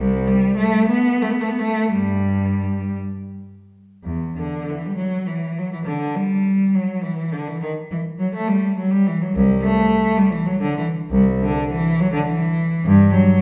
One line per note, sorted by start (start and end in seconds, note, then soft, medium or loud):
0.00 0.28 C2 medium
0.27 0.58 G3 medium
0.56 0.88 A3 medium
0.88 1.21 B3 medium
1.22 1.31 A3 medium
1.31 1.40 B3 medium
1.41 1.50 A3 medium
1.49 1.58 B3 medium
1.59 1.91 A3 medium
1.91 2.91 G2 medium
1.91 2.93 G3 medium
4.04 4.35 E2 medium
4.36 4.67 D3 medium
4.69 4.83 E3 soft
4.86 4.99 G3 medium
4.96 5.27 F#3 medium
5.26 5.57 E3 medium
5.58 5.73 F#3 medium
5.73 5.78 E3 medium
5.85 6.14 D3 medium
6.15 6.73 G3 medium
6.75 7.03 F#3 medium
7.02 7.31 E3 medium
7.33 7.46 D3 medium
7.48 7.61 E3 medium
7.62 7.70 D#3 medium
7.91 7.99 E3 medium
8.19 8.32 F#3 medium
8.35 8.47 A3 medium
8.48 8.76 G3 medium
8.78 8.91 F#3 medium
8.91 9.04 G3 medium
9.07 9.20 E3 medium
9.22 9.34 F#3 medium
9.35 9.62 C2 medium
9.62 10.17 A3 medium
10.17 10.31 G3 medium
10.32 10.46 E3 medium
10.46 10.61 F#3 medium
10.61 10.76 D3 medium
10.77 10.85 E3 medium
11.11 11.40 C2 medium
11.41 11.69 D3 medium
11.71 11.98 E3 medium
12.00 12.13 F#3 medium
12.13 12.26 D3 medium
12.25 12.81 E3 medium
12.85 13.12 G2 medium
13.11 13.40 F#3 medium